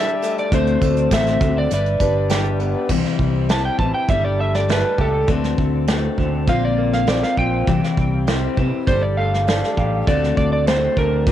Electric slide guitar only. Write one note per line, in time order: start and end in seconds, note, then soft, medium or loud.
0.00 0.39 E5 loud
0.39 0.54 D5 medium
0.54 1.15 C5 medium
1.14 1.59 E5 loud
1.58 1.73 D5 medium
1.74 2.58 D5 medium
3.51 3.65 A5 loud
3.65 3.79 G5 medium
3.80 3.94 A5 medium
3.94 4.09 G5 medium
4.09 4.24 E5 medium
4.24 4.39 D5 medium
4.40 4.54 E5 medium
4.55 4.69 D5 medium
4.72 4.99 B4 medium
5.01 5.29 A4 medium
6.49 6.63 F5 loud
6.65 6.93 D5 medium
6.94 7.08 F5 medium
7.08 7.23 D5 medium
7.24 7.38 F5 medium
7.39 8.54 G5 loud
8.88 9.02 C5 loud
9.02 9.17 D5 medium
9.17 10.04 F5 medium
10.08 10.36 D5 medium
10.37 10.52 D5 medium
10.53 10.67 D5 medium
10.68 10.97 C5 medium
10.98 11.32 A#4 loud